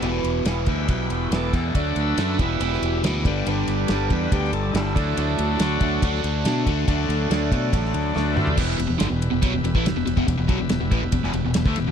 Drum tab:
CC |----------------|----------------|----------------|----------------|
RD |x-x-x-x-x-x-x-x-|x-x-x-x-x-x-x-x-|x-x-x-x-x-x-x-x-|x-x-x-x-x-x-x-x-|
SD |----o-------o-o-|----o----o--o---|----o----o--o---|----o----o--o---|
T2 |----------------|----------------|----------------|----------------|
FT |----------------|----------------|----------------|----------------|
BD |------o-o-----o-|o-----o-------o-|------o-o-----o-|------o-o-----o-|

CC |----------------|x---------------|----------------|
RD |x-x-x-x-x-x-----|--x-x-x-x-x-x-x-|x-x-x-x-x-x-x-x-|
SD |----o----o--o---|----o-------o---|----o----o--o-o-|
T2 |--------------o-|----------------|----------------|
FT |---------------o|----------------|----------------|
BD |o-----o-o-------|o-------o--o---o|o-o---o-o----o--|